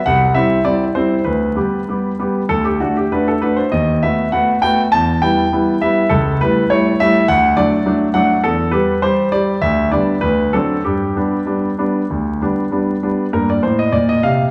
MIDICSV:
0, 0, Header, 1, 2, 480
1, 0, Start_track
1, 0, Key_signature, 1, "major"
1, 0, Tempo, 607287
1, 999, Time_signature, 4, 2, 24, 8
1, 3415, Tempo, 589391
1, 7735, Tempo, 619195
1, 10615, Tempo, 597015
1, 11554, End_track
2, 0, Start_track
2, 0, Title_t, "Grand piano"
2, 0, Program_c, 0, 0
2, 45, Note_on_c, 0, 78, 71
2, 51, Note_on_c, 0, 36, 48
2, 273, Note_on_c, 0, 76, 61
2, 276, Note_on_c, 0, 55, 31
2, 277, Note_off_c, 0, 36, 0
2, 278, Note_on_c, 0, 64, 35
2, 280, Note_on_c, 0, 60, 32
2, 281, Note_off_c, 0, 78, 0
2, 448, Note_off_c, 0, 55, 0
2, 450, Note_off_c, 0, 60, 0
2, 450, Note_off_c, 0, 64, 0
2, 489, Note_off_c, 0, 76, 0
2, 511, Note_on_c, 0, 55, 34
2, 511, Note_on_c, 0, 74, 64
2, 513, Note_on_c, 0, 60, 31
2, 517, Note_on_c, 0, 64, 36
2, 657, Note_off_c, 0, 74, 0
2, 686, Note_off_c, 0, 55, 0
2, 687, Note_off_c, 0, 60, 0
2, 690, Note_off_c, 0, 64, 0
2, 751, Note_on_c, 0, 72, 58
2, 756, Note_on_c, 0, 55, 27
2, 759, Note_on_c, 0, 60, 32
2, 759, Note_on_c, 0, 64, 33
2, 931, Note_off_c, 0, 55, 0
2, 933, Note_off_c, 0, 60, 0
2, 933, Note_off_c, 0, 64, 0
2, 971, Note_off_c, 0, 72, 0
2, 984, Note_on_c, 0, 71, 47
2, 993, Note_on_c, 0, 38, 36
2, 1231, Note_off_c, 0, 38, 0
2, 1233, Note_on_c, 0, 55, 25
2, 1233, Note_on_c, 0, 59, 26
2, 1236, Note_on_c, 0, 67, 28
2, 1411, Note_off_c, 0, 55, 0
2, 1411, Note_off_c, 0, 59, 0
2, 1413, Note_off_c, 0, 67, 0
2, 1487, Note_on_c, 0, 55, 28
2, 1492, Note_on_c, 0, 59, 26
2, 1500, Note_on_c, 0, 67, 30
2, 1661, Note_off_c, 0, 55, 0
2, 1664, Note_off_c, 0, 59, 0
2, 1669, Note_off_c, 0, 67, 0
2, 1729, Note_on_c, 0, 55, 29
2, 1735, Note_on_c, 0, 59, 30
2, 1739, Note_on_c, 0, 67, 28
2, 1903, Note_off_c, 0, 55, 0
2, 1907, Note_off_c, 0, 59, 0
2, 1910, Note_off_c, 0, 67, 0
2, 1962, Note_off_c, 0, 71, 0
2, 1968, Note_on_c, 0, 38, 37
2, 1969, Note_on_c, 0, 69, 60
2, 2091, Note_off_c, 0, 69, 0
2, 2092, Note_on_c, 0, 67, 45
2, 2204, Note_off_c, 0, 38, 0
2, 2213, Note_off_c, 0, 67, 0
2, 2214, Note_on_c, 0, 66, 45
2, 2218, Note_on_c, 0, 57, 23
2, 2220, Note_on_c, 0, 62, 25
2, 2334, Note_off_c, 0, 66, 0
2, 2345, Note_on_c, 0, 67, 47
2, 2389, Note_off_c, 0, 57, 0
2, 2391, Note_off_c, 0, 62, 0
2, 2460, Note_off_c, 0, 67, 0
2, 2466, Note_on_c, 0, 71, 49
2, 2467, Note_on_c, 0, 57, 26
2, 2471, Note_on_c, 0, 66, 28
2, 2474, Note_on_c, 0, 62, 27
2, 2580, Note_off_c, 0, 71, 0
2, 2591, Note_on_c, 0, 69, 43
2, 2635, Note_off_c, 0, 57, 0
2, 2638, Note_off_c, 0, 66, 0
2, 2640, Note_off_c, 0, 62, 0
2, 2700, Note_on_c, 0, 57, 24
2, 2700, Note_on_c, 0, 71, 48
2, 2703, Note_off_c, 0, 69, 0
2, 2703, Note_on_c, 0, 62, 25
2, 2712, Note_on_c, 0, 66, 26
2, 2818, Note_off_c, 0, 71, 0
2, 2818, Note_on_c, 0, 72, 49
2, 2871, Note_off_c, 0, 57, 0
2, 2873, Note_off_c, 0, 62, 0
2, 2879, Note_off_c, 0, 66, 0
2, 2936, Note_off_c, 0, 72, 0
2, 2937, Note_on_c, 0, 75, 54
2, 2938, Note_on_c, 0, 39, 37
2, 3169, Note_off_c, 0, 39, 0
2, 3176, Note_off_c, 0, 75, 0
2, 3182, Note_on_c, 0, 76, 53
2, 3185, Note_on_c, 0, 57, 26
2, 3187, Note_on_c, 0, 59, 28
2, 3190, Note_on_c, 0, 66, 28
2, 3354, Note_off_c, 0, 57, 0
2, 3355, Note_off_c, 0, 59, 0
2, 3357, Note_off_c, 0, 66, 0
2, 3394, Note_off_c, 0, 76, 0
2, 3415, Note_on_c, 0, 78, 57
2, 3420, Note_on_c, 0, 57, 29
2, 3422, Note_on_c, 0, 66, 34
2, 3423, Note_on_c, 0, 59, 33
2, 3594, Note_off_c, 0, 57, 0
2, 3595, Note_off_c, 0, 66, 0
2, 3596, Note_off_c, 0, 59, 0
2, 3635, Note_off_c, 0, 78, 0
2, 3655, Note_on_c, 0, 57, 34
2, 3658, Note_on_c, 0, 79, 67
2, 3664, Note_on_c, 0, 66, 33
2, 3666, Note_on_c, 0, 59, 35
2, 3804, Note_off_c, 0, 79, 0
2, 3831, Note_off_c, 0, 57, 0
2, 3837, Note_off_c, 0, 66, 0
2, 3838, Note_off_c, 0, 59, 0
2, 3901, Note_on_c, 0, 81, 69
2, 3906, Note_on_c, 0, 40, 44
2, 4137, Note_off_c, 0, 40, 0
2, 4142, Note_off_c, 0, 81, 0
2, 4146, Note_on_c, 0, 79, 58
2, 4149, Note_on_c, 0, 55, 32
2, 4151, Note_on_c, 0, 59, 32
2, 4156, Note_on_c, 0, 64, 34
2, 4319, Note_off_c, 0, 55, 0
2, 4321, Note_off_c, 0, 59, 0
2, 4324, Note_off_c, 0, 64, 0
2, 4397, Note_on_c, 0, 59, 33
2, 4398, Note_on_c, 0, 55, 33
2, 4405, Note_on_c, 0, 64, 34
2, 4565, Note_off_c, 0, 55, 0
2, 4565, Note_off_c, 0, 59, 0
2, 4570, Note_off_c, 0, 64, 0
2, 4624, Note_off_c, 0, 79, 0
2, 4632, Note_on_c, 0, 76, 59
2, 4634, Note_on_c, 0, 55, 34
2, 4636, Note_on_c, 0, 59, 31
2, 4641, Note_on_c, 0, 64, 37
2, 4802, Note_off_c, 0, 55, 0
2, 4804, Note_off_c, 0, 59, 0
2, 4807, Note_off_c, 0, 64, 0
2, 4860, Note_on_c, 0, 69, 56
2, 4867, Note_off_c, 0, 76, 0
2, 4869, Note_on_c, 0, 37, 41
2, 5078, Note_off_c, 0, 69, 0
2, 5099, Note_off_c, 0, 37, 0
2, 5117, Note_on_c, 0, 71, 65
2, 5118, Note_on_c, 0, 55, 31
2, 5122, Note_on_c, 0, 57, 33
2, 5123, Note_on_c, 0, 64, 35
2, 5286, Note_off_c, 0, 55, 0
2, 5289, Note_off_c, 0, 57, 0
2, 5290, Note_off_c, 0, 64, 0
2, 5328, Note_off_c, 0, 71, 0
2, 5353, Note_on_c, 0, 73, 62
2, 5357, Note_on_c, 0, 64, 38
2, 5359, Note_on_c, 0, 55, 36
2, 5363, Note_on_c, 0, 57, 36
2, 5526, Note_off_c, 0, 55, 0
2, 5526, Note_off_c, 0, 64, 0
2, 5529, Note_off_c, 0, 57, 0
2, 5589, Note_off_c, 0, 73, 0
2, 5598, Note_on_c, 0, 76, 76
2, 5600, Note_on_c, 0, 55, 38
2, 5606, Note_on_c, 0, 57, 38
2, 5609, Note_on_c, 0, 64, 39
2, 5766, Note_off_c, 0, 55, 0
2, 5769, Note_off_c, 0, 57, 0
2, 5771, Note_off_c, 0, 64, 0
2, 5806, Note_off_c, 0, 76, 0
2, 5828, Note_on_c, 0, 38, 52
2, 5828, Note_on_c, 0, 78, 85
2, 6055, Note_off_c, 0, 38, 0
2, 6059, Note_on_c, 0, 54, 31
2, 6059, Note_on_c, 0, 74, 71
2, 6062, Note_off_c, 0, 78, 0
2, 6068, Note_on_c, 0, 57, 35
2, 6069, Note_on_c, 0, 62, 36
2, 6229, Note_off_c, 0, 54, 0
2, 6235, Note_off_c, 0, 57, 0
2, 6236, Note_off_c, 0, 62, 0
2, 6294, Note_on_c, 0, 54, 35
2, 6299, Note_on_c, 0, 57, 35
2, 6304, Note_on_c, 0, 62, 39
2, 6344, Note_off_c, 0, 74, 0
2, 6466, Note_off_c, 0, 54, 0
2, 6469, Note_off_c, 0, 57, 0
2, 6472, Note_off_c, 0, 62, 0
2, 6525, Note_on_c, 0, 78, 68
2, 6529, Note_on_c, 0, 54, 33
2, 6531, Note_on_c, 0, 57, 35
2, 6539, Note_on_c, 0, 62, 39
2, 6703, Note_off_c, 0, 54, 0
2, 6704, Note_off_c, 0, 57, 0
2, 6709, Note_off_c, 0, 62, 0
2, 6765, Note_on_c, 0, 40, 43
2, 6767, Note_on_c, 0, 69, 60
2, 6769, Note_off_c, 0, 78, 0
2, 6993, Note_on_c, 0, 71, 53
2, 7001, Note_on_c, 0, 55, 32
2, 7002, Note_off_c, 0, 40, 0
2, 7002, Note_on_c, 0, 67, 35
2, 7010, Note_off_c, 0, 69, 0
2, 7178, Note_off_c, 0, 55, 0
2, 7178, Note_off_c, 0, 67, 0
2, 7243, Note_off_c, 0, 71, 0
2, 7244, Note_on_c, 0, 72, 65
2, 7247, Note_on_c, 0, 55, 36
2, 7247, Note_on_c, 0, 67, 37
2, 7421, Note_off_c, 0, 55, 0
2, 7422, Note_off_c, 0, 67, 0
2, 7486, Note_on_c, 0, 74, 72
2, 7487, Note_on_c, 0, 55, 37
2, 7488, Note_off_c, 0, 72, 0
2, 7489, Note_on_c, 0, 67, 38
2, 7663, Note_off_c, 0, 55, 0
2, 7664, Note_off_c, 0, 67, 0
2, 7727, Note_on_c, 0, 38, 47
2, 7727, Note_on_c, 0, 76, 68
2, 7731, Note_off_c, 0, 74, 0
2, 7940, Note_off_c, 0, 76, 0
2, 7957, Note_off_c, 0, 38, 0
2, 7961, Note_on_c, 0, 74, 58
2, 7963, Note_on_c, 0, 59, 29
2, 7964, Note_on_c, 0, 55, 30
2, 7967, Note_on_c, 0, 62, 34
2, 8135, Note_off_c, 0, 55, 0
2, 8135, Note_off_c, 0, 59, 0
2, 8137, Note_off_c, 0, 62, 0
2, 8189, Note_on_c, 0, 71, 63
2, 8197, Note_on_c, 0, 38, 41
2, 8201, Note_off_c, 0, 74, 0
2, 8432, Note_off_c, 0, 38, 0
2, 8435, Note_off_c, 0, 71, 0
2, 8437, Note_on_c, 0, 69, 52
2, 8438, Note_on_c, 0, 54, 29
2, 8444, Note_on_c, 0, 60, 28
2, 8447, Note_on_c, 0, 62, 34
2, 8613, Note_off_c, 0, 54, 0
2, 8617, Note_off_c, 0, 60, 0
2, 8619, Note_off_c, 0, 62, 0
2, 8656, Note_off_c, 0, 69, 0
2, 8680, Note_on_c, 0, 67, 42
2, 8688, Note_on_c, 0, 43, 33
2, 8921, Note_off_c, 0, 43, 0
2, 8922, Note_on_c, 0, 55, 27
2, 8926, Note_on_c, 0, 59, 26
2, 8932, Note_on_c, 0, 62, 30
2, 9098, Note_off_c, 0, 55, 0
2, 9101, Note_off_c, 0, 59, 0
2, 9104, Note_off_c, 0, 62, 0
2, 9154, Note_on_c, 0, 55, 31
2, 9160, Note_on_c, 0, 59, 29
2, 9163, Note_on_c, 0, 62, 32
2, 9333, Note_off_c, 0, 55, 0
2, 9337, Note_off_c, 0, 59, 0
2, 9339, Note_off_c, 0, 62, 0
2, 9408, Note_on_c, 0, 55, 30
2, 9411, Note_on_c, 0, 62, 34
2, 9415, Note_on_c, 0, 59, 31
2, 9582, Note_off_c, 0, 55, 0
2, 9584, Note_off_c, 0, 62, 0
2, 9587, Note_off_c, 0, 59, 0
2, 9657, Note_on_c, 0, 38, 34
2, 9887, Note_off_c, 0, 38, 0
2, 9895, Note_on_c, 0, 55, 26
2, 9901, Note_on_c, 0, 59, 26
2, 9904, Note_on_c, 0, 62, 31
2, 10067, Note_off_c, 0, 55, 0
2, 10071, Note_off_c, 0, 59, 0
2, 10073, Note_off_c, 0, 62, 0
2, 10127, Note_on_c, 0, 55, 27
2, 10136, Note_on_c, 0, 62, 33
2, 10137, Note_on_c, 0, 59, 28
2, 10303, Note_off_c, 0, 55, 0
2, 10309, Note_off_c, 0, 59, 0
2, 10309, Note_off_c, 0, 62, 0
2, 10372, Note_off_c, 0, 67, 0
2, 10373, Note_on_c, 0, 55, 28
2, 10375, Note_on_c, 0, 59, 30
2, 10376, Note_on_c, 0, 62, 31
2, 10545, Note_off_c, 0, 55, 0
2, 10546, Note_off_c, 0, 59, 0
2, 10547, Note_off_c, 0, 62, 0
2, 10607, Note_on_c, 0, 43, 34
2, 10607, Note_on_c, 0, 58, 24
2, 10609, Note_on_c, 0, 70, 44
2, 10732, Note_off_c, 0, 70, 0
2, 10742, Note_on_c, 0, 74, 47
2, 10802, Note_off_c, 0, 43, 0
2, 10847, Note_on_c, 0, 72, 48
2, 10851, Note_on_c, 0, 45, 31
2, 10858, Note_off_c, 0, 74, 0
2, 10971, Note_off_c, 0, 72, 0
2, 10976, Note_on_c, 0, 75, 53
2, 11044, Note_off_c, 0, 45, 0
2, 11084, Note_on_c, 0, 74, 55
2, 11087, Note_on_c, 0, 46, 37
2, 11095, Note_off_c, 0, 75, 0
2, 11209, Note_off_c, 0, 74, 0
2, 11217, Note_on_c, 0, 75, 54
2, 11282, Note_off_c, 0, 46, 0
2, 11332, Note_on_c, 0, 77, 60
2, 11333, Note_on_c, 0, 48, 39
2, 11335, Note_off_c, 0, 75, 0
2, 11476, Note_off_c, 0, 77, 0
2, 11524, Note_off_c, 0, 48, 0
2, 11537, Note_off_c, 0, 58, 0
2, 11554, End_track
0, 0, End_of_file